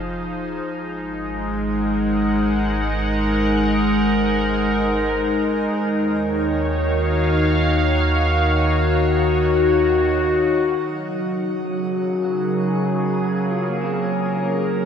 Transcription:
Already playing: F1 F3 D#4 G#4 C5 F5
0.64 G#1 G#3
1.04 A#4
1.40 F#5
5.73 D#2 D#3
5.96 C#5
6.55 F5
6.65 F#4
10.81 F#3
10.99 C#3
11.80 G#4 A#4
12.24 F#4
13.51 F4
13.69 A#3
13.81 C4
14.44 A#3

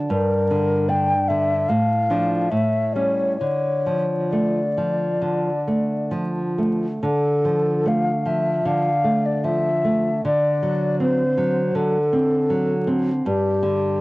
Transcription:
Already playing: D4
0.10 G2 A#4
0.50 D3
0.89 D4 G5
1.28 D3 E5
1.69 A2 F5
2.10 F3 D4
2.50 A2 E5
2.93 G3 C#4 C#5
3.38 D3 C#5
3.86 F3
4.31 A3 D5
4.77 F3
5.21 D3
5.67 A3
6.11 F3
6.58 A3
7.03 D3 A4
7.45 F3
7.85 A3 F5
8.25 F3 E5
8.65 D3 F5
9.04 A3
9.26 D5
9.44 F3 E5
9.84 A3
10.25 D3 D5
10.63 F#3
11.00 C4 C5
11.37 F#3
11.74 D3 A4
12.13 C4
12.50 F#3
12.87 C4
13.25 G2 G4
13.63 D3

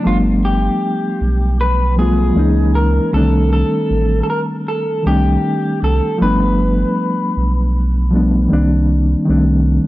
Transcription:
0.03 G1 F3 G3 A3 B3
0.07 D4 F4
0.45 G4
1.21 B1
1.61 B4
1.96 F3 G3 A3 G#4
2.00 B3 F4
2.33 C#2 E3 G#3 A#3 C#4
2.39 D#4
2.75 A#4
3.11 C2 D3 G3 A3 C4 A4
3.17 D#3 D4
3.53 A4
3.90 A1
4.23 A4
4.30 A#4
4.68 A4
5.03 C2 D#3 G3 A3
5.07 C4 D4 G4
5.82 C2 A4
6.18 G1 F3 G3 A3
6.22 B3 D4 B4
7.37 B1
8.10 F3 G3 A3
8.14 B3 D4
8.48 C2 D#3 G3 A#3
8.52 C4 D4
9.25 C2 D#3 G3 A3
9.29 C4 D4

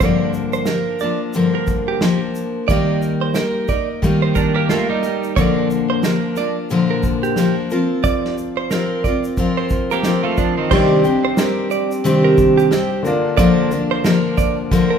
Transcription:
0.00 G2 D3 F3 A#3 D4 A#4 D5, kick, shaker
0.34 shaker
0.53 C5, shaker
0.65 F3 A#3 A#4, snare, shaker
0.70 D4 A#4
0.99 A#3 D4 A#4 D5, shaker
1.04 F3
1.33 G2 D3 F3 A#3 D4 A#4, shaker
1.55 A#4
1.67 kick, shaker
1.88 G4
2.01 F3 A#3 D4 A#4, snare, shaker
2.35 shaker
2.68 D#3 G3 A#3 D#4 A#4 D5, kick, shaker
3.02 shaker
3.21 C5
3.34 G3 A#3 A#4, snare, shaker
3.39 D#4 A#4
3.68 A#3 D#4 A#4 D5, kick, shaker
4.02 D#3 G3 A#3 D#4 A#4, kick, shaker
4.22 C5
4.35 D4 A#4, kick, shaker
4.54 A#3 G4 A#4
4.69 G3 A3 A#3 D#4 F4 A#4, snare, shaker
4.89 G3 D#4
5.03 A#3 D#4 A#4, shaker
5.24 shaker
5.36 A#2 D3 F3 A#3 D4 A#4 D5, kick, shaker
5.71 shaker
5.90 C5
6.02 F3 A#3 D4 A#4, snare, shaker
6.36 F3 A#3 D4 A#4 D5, shaker
6.70 A#2 D3 F3 A#3 D4 A#4, shaker
6.91 A#4
7.03 kick, shaker
7.23 G4, shaker
7.36 F3 A#3 D4 A#4, snare, shaker
7.71 F3 C4 F4 A#4, shaker
8.04 D5, kick, shaker
8.25 snare
8.38 shaker
8.57 C5
8.71 F3 C4 F4 A#4, snare, shaker
9.04 C4 F4 A#4 D5, kick, shaker
9.24 shaker
9.37 F3 C4 F4 A#4, kick, shaker
9.57 C5
9.70 kick, shaker
9.91 A#3 G4 A#4, shaker
10.03 F3 C4 F4, snare, shaker
10.07 A#4
10.23 A3 F4
10.37 F3 D4, kick, shaker
10.57 D#3 C4
10.70 C3 D#3 G3 C4 D4 D#4 G4 D5, kick, crash
11.04 G3 C4 D4 G4, shaker
11.25 C5
11.37 G3 C4 D4 G4 A#4, snare, shaker
11.71 D5, shaker
11.91 shaker
12.04 C3 D#3 G3 C4 D4 G4, shaker
12.24 A#4
12.38 kick, shaker
12.57 G4, shaker
12.71 G3 C4 D4 G4, snare, shaker
13.03 D3 A#3 D4 F4 A#4, shaker
13.07 A#3 D5
13.37 D3 F3 A#3 D4 A#4 D5, kick, shaker
13.71 A#3 D4 A#4, shaker
13.91 C5
14.04 F3 A#3 D4 A#4, snare, shaker
14.38 D5, kick, shaker
14.71 D3 F3 A#3 D4 A#4, kick, shaker
14.90 A#4

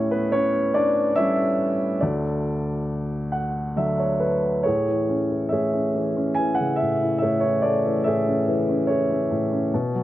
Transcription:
Already playing: A2 C#4 E4 G4 C#5
0.11 B3 B4
0.32 C#4 C#5
0.74 D4 D5
1.16 G3 A3 C#4 E4 C#5 E5
2.00 D2 D4 F#4 A4 D5
3.32 F#5
3.76 D3 F#3 D4 E5
3.99 C#5
4.20 B4
4.63 A2 E4 G#4 C#5
4.88 E3
5.09 C#4
5.31 E3
5.49 A2 G#4 C#5 E5
5.73 C#4
5.95 E3
6.17 C#4
6.35 G#5
6.39 E3
6.55 F#5
6.60 C#3
6.76 E5
6.82 A2
7.03 E4
7.18 G#4 C#5 E5
7.24 A2
7.40 E3 C#5
7.62 A3 D5
7.86 E3
8.04 A2 G#4 C#5 E5
8.27 C#4
8.48 E3
8.69 C#4
8.87 E3 E4 G#4 C#5
9.11 C#4
9.31 A2
9.53 C#4
9.74 B2
9.95 F#3

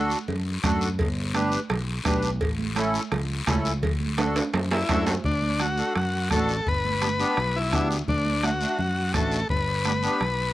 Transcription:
Already playing: D2 D4 F#4 A4
0.10 short guiro
0.28 F#2, cowbell, low conga, long guiro
0.63 F#2 D4 F#4 A4, bombo low, bombo rim, cowbell, high conga, low conga, short guiro
0.81 short guiro
0.99 G1, bombo low, cowbell, long guiro
1.34 D4 G4 B4, bombo rim, cowbell, high conga, short guiro
1.52 short guiro
1.70 B1, bombo rim, cowbell, low conga, long guiro
2.05 B1 D4 G4 B4, bombo low, bombo rim, cowbell, high conga, short guiro
2.23 short guiro
2.41 A1, bombo low, cowbell, long guiro
2.59 high conga
2.75 C#4 E4 A4, bombo rim, cowbell, high conga, short guiro
2.94 short guiro
3.12 C#2, bombo rim, cowbell, low conga, long guiro
3.47 C#2 C#4 E4 A4, bombo low, bombo rim, cowbell, high conga, low conga, low timbale, short guiro
3.65 short guiro
3.83 D2, bombo low, cowbell, low conga, long guiro
4.00 high conga
4.18 D4 F#4 A4, bombo rim, cowbell, high conga, high timbale, short guiro
4.36 high timbale, short guiro
4.54 F#2, bombo rim, cowbell, low conga, low timbale, long guiro
4.71 E4, low timbale
4.89 F#2 D4 F#4 A4, bombo low, bombo rim, cowbell, high conga, low timbale, short guiro
5.06 low timbale, short guiro
5.24 D2 D4, bombo low, long guiro
5.42 high conga
5.59 D4 F#4 A4, bombo rim, high conga, short guiro
5.77 D4 F#4 A4, short guiro
5.96 F#2 F#4, bombo rim, low conga, long guiro
6.30 A1 D4 F#4 A4, bombo low, bombo rim, high conga, low conga, short guiro
6.49 short guiro
6.66 G1 B4, bombo low, long guiro
6.85 high conga
7.01 B3 D4 G4, bombo rim, high conga, short guiro
7.19 B3 D4 G4, short guiro
7.37 B1, bombo rim, low conga, long guiro
7.56 E4
7.72 D2 B3 D4 G4, bombo low, bombo rim, high conga, low conga, short guiro
7.91 short guiro
8.08 D2 D4, bombo low, low conga, long guiro
8.26 high conga
8.43 A3 D4 F#4, bombo rim, high conga, short guiro
8.61 A3 D4 F#4, short guiro
8.79 F#2 F#4, low conga, long guiro
9.14 A1 A3 D4 F#4 A4, bombo low, bombo rim, high conga, low conga, short guiro
9.32 short guiro
9.49 G1 B4, bombo low, long guiro
9.85 B3 D4 G4, bombo rim, high conga, short guiro
10.02 B3 D4 G4, short guiro
10.21 B1, bombo rim, low conga, long guiro

